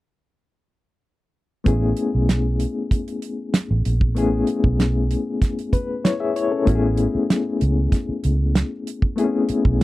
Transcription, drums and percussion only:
1.66 kick, closed hi-hat
1.97 closed hi-hat
2.29 snare, closed hi-hat
2.60 closed hi-hat
2.91 kick, closed hi-hat
3.08 closed hi-hat
3.22 closed hi-hat
3.54 snare, closed hi-hat
3.85 closed hi-hat
4.01 kick
4.17 closed hi-hat
4.47 closed hi-hat
4.64 kick
4.80 snare, closed hi-hat
5.11 closed hi-hat
5.42 kick, snare, closed hi-hat
5.59 closed hi-hat
5.73 kick, closed hi-hat
6.05 snare, closed hi-hat
6.36 closed hi-hat
6.67 kick, closed hi-hat
6.97 closed hi-hat
7.30 snare, closed hi-hat
7.61 closed hi-hat
7.92 kick, snare, closed hi-hat
8.24 closed hi-hat
8.55 snare, closed hi-hat
8.87 closed hi-hat
9.02 kick
9.18 closed hi-hat
9.49 closed hi-hat
9.65 kick

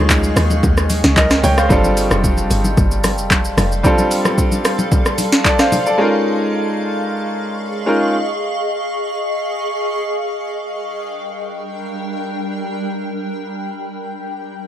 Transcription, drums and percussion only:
0.10 kick, clap, shaker
0.23 high conga, shaker
0.37 cross-stick, open hi-hat, shaker
0.50 high conga, shaker
0.63 kick, low conga, shaker
0.77 cross-stick, shaker
0.90 open hi-hat, high conga, shaker
1.04 snare, shaker
1.17 kick, clap, high conga, shaker
1.31 cross-stick, snare, shaker
1.44 open hi-hat, high conga, low conga, shaker
1.58 cross-stick, shaker
1.70 kick, low conga, shaker
1.84 high conga, shaker
1.97 open hi-hat, shaker
2.11 cross-stick, high conga, shaker
2.24 kick, shaker
2.37 high conga, shaker
2.51 open hi-hat, shaker
2.64 high conga, shaker
2.77 kick, low conga, shaker
2.91 shaker
3.04 cross-stick, open hi-hat, high conga, shaker
3.18 shaker
3.31 kick, clap, high conga, shaker
3.45 shaker
3.58 cross-stick, open hi-hat, high conga, low conga, shaker
3.72 shaker
3.84 kick, low conga, shaker
3.98 high conga, shaker
4.11 open hi-hat, shaker
4.25 cross-stick, high conga, shaker
4.38 kick, shaker
4.52 high conga, shaker
4.65 cross-stick, open hi-hat, shaker
4.79 high conga, shaker
4.92 kick, low conga, shaker
5.06 cross-stick, shaker
5.18 open hi-hat, high conga, shaker
5.32 snare, shaker
5.45 kick, clap, high conga, shaker
5.59 cross-stick, snare, shaker
5.72 open hi-hat, high conga, low conga, shaker
5.86 shaker

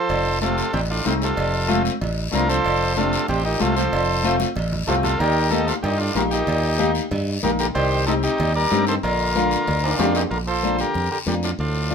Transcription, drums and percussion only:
0.09 cowbell, high conga, long guiro
0.42 high conga, short guiro
0.58 short guiro
0.73 cowbell, high conga, low conga, long guiro
1.05 high conga, low timbale, short guiro
1.22 short guiro
1.37 cowbell, high conga, long guiro
1.69 high conga, short guiro
1.85 short guiro
2.01 cowbell, high conga, low conga, long guiro
2.33 high conga, short guiro
2.50 short guiro
2.65 cowbell, high conga, long guiro
2.96 high conga, short guiro
3.13 short guiro
3.28 cowbell, high conga, low conga, long guiro
3.60 high conga, low timbale, short guiro
3.76 short guiro
3.92 cowbell, high conga, long guiro
4.23 high conga, short guiro
4.40 high conga, short guiro
4.56 cowbell, low conga, long guiro
4.72 low conga
4.87 low conga, low timbale, short guiro
5.03 low conga, short guiro
5.19 cowbell, high conga, long guiro
5.51 high conga, short guiro
5.68 short guiro
5.84 cowbell, high conga, low conga, long guiro
6.15 high conga, low timbale, short guiro
6.31 short guiro
6.47 cowbell, high conga, low conga, long guiro
6.79 high conga, short guiro
6.95 short guiro
7.11 cowbell, high conga, low conga, long guiro
7.43 high conga, low conga, short guiro
7.59 short guiro
7.75 cowbell, high conga, long guiro
8.07 high conga, short guiro
8.23 short guiro
8.38 cowbell, high conga, low conga, long guiro
8.71 high conga, short guiro
8.87 short guiro
9.03 cowbell, high conga, long guiro
9.35 high conga, short guiro
9.51 short guiro
9.67 cowbell, high conga, low conga, long guiro
9.84 high timbale
9.98 high conga, low timbale, short guiro
10.15 low timbale, short guiro
10.31 high conga, long guiro
10.63 high conga, short guiro
10.78 short guiro
10.94 high conga, low conga, long guiro
11.26 high conga, short guiro
11.43 short guiro
11.58 high conga, long guiro
11.90 high conga, short guiro

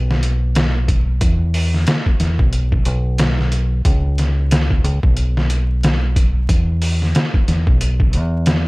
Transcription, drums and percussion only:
0.11 snare
0.23 closed hi-hat
0.55 snare, closed hi-hat
0.88 kick, closed hi-hat
1.21 kick, closed hi-hat
1.54 open hi-hat
1.74 snare
1.87 snare, closed hi-hat
2.06 kick
2.20 snare, closed hi-hat
2.39 kick
2.53 closed hi-hat
2.72 kick
2.85 closed hi-hat
3.18 snare, closed hi-hat
3.39 snare
3.52 closed hi-hat
3.85 kick, closed hi-hat
4.18 snare, closed hi-hat
4.51 snare, closed hi-hat
4.70 kick
4.85 closed hi-hat
5.03 kick
5.17 closed hi-hat
5.37 snare
5.50 closed hi-hat
5.83 snare, closed hi-hat
6.16 kick, closed hi-hat
6.49 kick, closed hi-hat
6.82 open hi-hat
7.02 snare
7.15 snare, closed hi-hat
7.34 kick
7.48 snare, closed hi-hat
7.67 kick
7.81 closed hi-hat
8.00 kick
8.13 closed hi-hat
8.46 snare, closed hi-hat

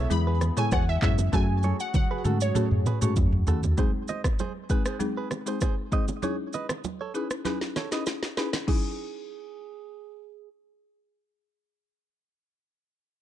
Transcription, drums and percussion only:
0.11 low conga, shaker
0.41 cross-stick, low bongo, shaker
0.57 mid tom, shaker
0.72 kick, cross-stick, high bongo, shaker
1.02 kick, clap, mid tom, shaker
1.18 low bongo, shaker
1.33 kick, high tom, low conga, shaker
1.63 high tom, high bongo, shaker
1.80 shaker
1.94 kick, mid tom, high bongo, low conga, shaker
2.25 mid tom, shaker
2.41 shaker
2.55 mid tom, low conga, shaker
2.71 mid tom
2.86 mid tom, low bongo, shaker
3.02 mid tom, shaker
3.16 kick, floor tom, high bongo, shaker
3.32 floor tom
3.47 floor tom, shaker
3.63 floor tom, low bongo, shaker
3.78 kick, low conga, shaker
4.08 high bongo, low bongo, shaker
4.24 kick, cross-stick, low bongo, shaker
4.39 high bongo, low conga, shaker
4.70 kick, shaker
4.85 cross-stick, shaker
5.00 low conga, shaker
5.31 cross-stick, low bongo, shaker
5.47 shaker
5.61 kick, cross-stick, high bongo, shaker
5.92 kick, shaker
6.08 high bongo, low bongo, shaker
6.23 low conga, shaker
6.53 high bongo, low bongo, shaker
6.69 cross-stick, low bongo, shaker
6.84 high bongo, low conga, shaker
7.15 shaker
7.31 cross-stick, shaker
7.45 snare, low conga, shaker
7.61 snare
7.76 snare, low bongo, shaker
7.92 snare, shaker
8.06 snare, high bongo, shaker
8.23 snare
8.37 snare, shaker
8.53 snare, high bongo, low bongo, shaker
8.68 kick, crash, low conga

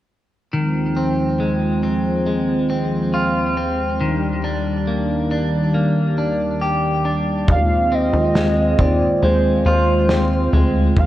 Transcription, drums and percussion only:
7.48 kick, floor tom
8.13 floor tom
8.35 snare
8.79 kick, floor tom
9.22 floor tom
10.09 snare
10.53 floor tom
10.96 kick, floor tom

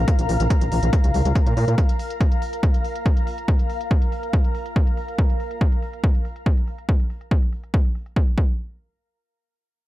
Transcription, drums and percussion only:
0.08 kick, closed hi-hat
0.19 closed hi-hat
0.29 open hi-hat
0.40 closed hi-hat
0.50 kick, closed hi-hat
0.61 closed hi-hat
0.72 open hi-hat
0.83 closed hi-hat
0.93 kick, closed hi-hat
1.04 closed hi-hat
1.14 open hi-hat
1.25 closed hi-hat
1.35 kick, closed hi-hat
1.47 closed hi-hat
1.57 open hi-hat
1.68 closed hi-hat
1.78 kick, closed hi-hat
1.89 closed hi-hat
1.99 open hi-hat
2.10 closed hi-hat
2.21 kick, closed hi-hat
2.32 closed hi-hat
2.42 open hi-hat
2.53 closed hi-hat
2.63 kick, closed hi-hat
2.74 closed hi-hat
2.85 open hi-hat
2.96 closed hi-hat
3.06 kick, closed hi-hat
3.17 closed hi-hat
3.27 open hi-hat
3.38 closed hi-hat
3.48 kick, closed hi-hat
3.59 closed hi-hat
3.70 open hi-hat
3.81 closed hi-hat
3.91 kick, closed hi-hat
4.02 closed hi-hat
4.12 open hi-hat
4.23 closed hi-hat
4.33 kick, closed hi-hat
4.44 closed hi-hat
4.55 open hi-hat
4.66 closed hi-hat
4.76 kick, closed hi-hat
4.87 closed hi-hat
4.97 open hi-hat
5.08 closed hi-hat
5.19 kick, closed hi-hat
5.30 closed hi-hat
5.40 open hi-hat
5.51 closed hi-hat
5.61 kick, closed hi-hat
5.72 closed hi-hat
5.82 open hi-hat
5.93 closed hi-hat
6.04 kick
6.15 closed hi-hat
6.25 open hi-hat
6.36 closed hi-hat
6.46 kick
6.57 closed hi-hat
6.68 open hi-hat
6.78 closed hi-hat
6.89 kick, closed hi-hat
7.00 closed hi-hat
7.10 open hi-hat
7.21 closed hi-hat
7.31 kick
7.42 closed hi-hat
7.53 open hi-hat
7.64 closed hi-hat
7.74 kick
7.85 closed hi-hat
7.95 open hi-hat
8.06 closed hi-hat
8.16 kick
8.27 closed hi-hat
8.38 kick

